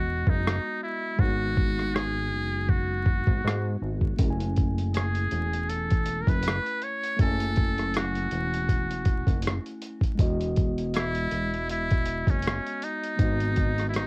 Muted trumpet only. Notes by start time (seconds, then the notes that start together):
Already playing: F#4
0.29 D#4
0.83 E4
1.20 F#4
1.95 G#4
2.70 F#4
4.95 G#4
5.69 A4
6.21 A#4
6.29 B4
6.84 C#5
7.21 A4
7.97 F#4
10.96 E4
11.71 E4
12.30 C#4
12.84 D#4
13.89 E4
13.96 D#4